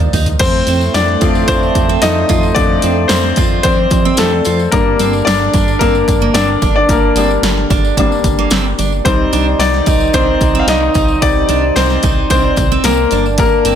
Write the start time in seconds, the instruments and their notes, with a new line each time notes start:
Already playing: grand piano F3 A#3 D#4 F4 F5
0.00 closed hi-hat, floor tom
0.13 analog synth bass D#2, steel-string acoustic guitar D#4, floor tom, open hi-hat, tambourine
0.26 closed hi-hat, floor tom, tambourine
0.39 analog synth bass F2, french horn section A2 A3, grand piano C4 C5, kick, closed hi-hat, crash, tambourine
0.67 analog synth bass F2, steel-string acoustic guitar C4, closed hi-hat, tambourine
0.81 tambourine
0.94 analog synth bass F2, grand piano D4 D5, snare, closed hi-hat, tambourine
1.08 snare
1.21 analog synth bass F2, grand piano F3 A3 C4, steel-string acoustic guitar F4, kick, closed hi-hat, tambourine
1.35 tambourine
1.48 analog synth bass F2, grand piano C4 C5, steel-string acoustic guitar D4, kick, closed hi-hat, tambourine
1.63 tambourine
1.75 analog synth bass F2, kick, closed hi-hat, tambourine
1.89 steel-string acoustic guitar C4
2.02 analog synth bass F2, grand piano F3 A3 C4 D#4 D#5, steel-string acoustic guitar D4, snare, closed hi-hat, tambourine
2.29 analog synth bass F2, steel-string acoustic guitar F4, kick, closed hi-hat, tambourine
2.43 tambourine
2.55 analog synth bass F2, grand piano F3 A3 C4 D4 D5, kick, closed hi-hat, tambourine
2.82 analog synth bass F2, steel-string acoustic guitar C4, closed hi-hat, tambourine
3.08 analog synth bass F2, grand piano C4 C5, snare, closed hi-hat, tambourine
3.23 snare
3.36 analog synth bass F2, steel-string acoustic guitar F4, kick, closed hi-hat, tambourine
3.63 analog synth bass F2, grand piano C4 C5, steel-string acoustic guitar D4, kick, closed hi-hat, tambourine
3.90 analog synth bass F2, french horn section C3 C4, kick, closed hi-hat, tambourine
4.05 steel-string acoustic guitar C4
4.17 analog synth bass F2, grand piano A3 A4, steel-string acoustic guitar D4, snare, closed hi-hat, tambourine
4.45 analog synth bass F2, steel-string acoustic guitar F4, closed hi-hat, tambourine
4.59 tambourine
4.72 analog synth bass G1, french horn section D3 D4, grand piano G3 A#3 D4 A#4, kick, closed hi-hat, tambourine
4.99 analog synth bass G1, steel-string acoustic guitar C4, closed hi-hat, tambourine
5.13 tambourine
5.25 analog synth bass G1, grand piano D4 D5, snare, closed hi-hat, tambourine
5.40 snare
5.54 analog synth bass G1, steel-string acoustic guitar D4, kick, closed hi-hat, tambourine
5.68 tambourine
5.79 analog synth bass G1, grand piano A#3 A#4, steel-string acoustic guitar C4, kick, closed hi-hat, tambourine
5.95 tambourine
6.08 analog synth bass G1, kick, closed hi-hat, tambourine
6.22 steel-string acoustic guitar A#3
6.34 analog synth bass G1, steel-string acoustic guitar C4, grand piano D4 D5, snare, closed hi-hat, tambourine
6.62 analog synth bass G1, steel-string acoustic guitar D4, kick, closed hi-hat, tambourine
6.76 grand piano D4 D5
6.89 analog synth bass G1, grand piano A#3 A#4, kick, closed hi-hat, tambourine
7.16 analog synth bass G1, grand piano G3 A#3 D4, steel-string acoustic guitar C4, closed hi-hat, tambourine
7.30 tambourine
7.42 analog synth bass G1, snare, closed hi-hat, tambourine
7.57 snare
7.70 analog synth bass G1, steel-string acoustic guitar D4, kick, closed hi-hat, tambourine
7.85 tambourine
7.97 analog synth bass G1, grand piano G3 A#3 D4, steel-string acoustic guitar C4, kick, closed hi-hat, tambourine
8.12 tambourine
8.24 analog synth bass G1, kick, closed hi-hat, tambourine
8.39 steel-string acoustic guitar A#3
8.50 analog synth bass G1, steel-string acoustic guitar C4, snare, closed hi-hat, tambourine
8.78 analog synth bass G1, steel-string acoustic guitar D4, closed hi-hat, tambourine
8.92 tambourine
9.04 analog synth bass C2, french horn section D#3 D#4, grand piano G3 C4 D#4 C5, kick, closed hi-hat, tambourine
9.32 analog synth bass C2, steel-string acoustic guitar D4, closed hi-hat, tambourine
9.59 analog synth bass C2, grand piano D#4 D5, snare, closed hi-hat, tambourine
9.74 snare
9.86 analog synth bass C2, steel-string acoustic guitar D#4, kick, closed hi-hat, tambourine
10.00 tambourine
10.13 analog synth bass C2, grand piano C4 C5, steel-string acoustic guitar D4, kick, closed hi-hat, tambourine
10.41 analog synth bass C2, kick, closed hi-hat, tambourine
10.55 steel-string acoustic guitar C4
10.60 grand piano F5
10.67 analog synth bass C2, steel-string acoustic guitar D4, grand piano D#4 D#5, snare, closed hi-hat, tambourine
10.94 analog synth bass C2, steel-string acoustic guitar D#4, kick, closed hi-hat, tambourine
11.08 tambourine
11.21 analog synth bass C2, grand piano G3 C4 D#4 D5, kick, closed hi-hat, tambourine
11.49 analog synth bass C2, steel-string acoustic guitar D4, closed hi-hat, tambourine
11.76 analog synth bass C2, grand piano C4 C5, snare, closed hi-hat, tambourine
11.90 snare
12.02 analog synth bass C2, steel-string acoustic guitar D#4, kick, closed hi-hat, tambourine
12.30 analog synth bass C2, grand piano C4 C5, steel-string acoustic guitar D4, kick, closed hi-hat, tambourine
12.56 analog synth bass C2, kick, closed hi-hat, tambourine
12.72 steel-string acoustic guitar C4
12.84 analog synth bass C2, grand piano A#3 A#4, steel-string acoustic guitar C4, snare, closed hi-hat, tambourine
13.11 analog synth bass G1, french horn section D3 D4, steel-string acoustic guitar D4, closed hi-hat, tambourine
13.26 tambourine
13.38 grand piano A#3 A#4, kick, closed hi-hat, tambourine
13.65 analog synth bass G1, steel-string acoustic guitar C4, closed hi-hat, tambourine